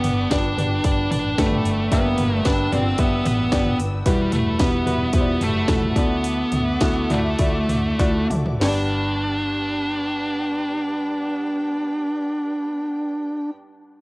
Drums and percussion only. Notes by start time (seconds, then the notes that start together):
0.04 floor tom, open hi-hat
0.31 kick, snare, open hi-hat
0.58 floor tom, open hi-hat
0.84 kick, open hi-hat
1.11 floor tom, open hi-hat
1.38 kick, snare, open hi-hat
1.52 floor tom
1.65 open hi-hat
1.92 kick, open hi-hat
2.18 floor tom, open hi-hat
2.45 kick, snare, open hi-hat
2.72 floor tom, open hi-hat
2.98 kick, open hi-hat
3.25 floor tom, open hi-hat
3.52 kick, snare, open hi-hat
3.66 floor tom
3.79 open hi-hat
4.06 kick, open hi-hat
4.32 floor tom, open hi-hat
4.59 kick, snare, open hi-hat
4.87 floor tom, open hi-hat
5.13 kick, open hi-hat
5.41 floor tom, open hi-hat
5.68 kick, snare, open hi-hat
5.82 floor tom
5.96 kick, open hi-hat
6.24 open hi-hat
6.52 floor tom, open hi-hat
6.81 kick, snare, open hi-hat
7.10 floor tom, open hi-hat
7.39 kick, open hi-hat
7.69 floor tom, open hi-hat
7.99 kick, snare, open hi-hat
8.30 mid tom, open hi-hat
8.46 floor tom
8.61 snare, open hi-hat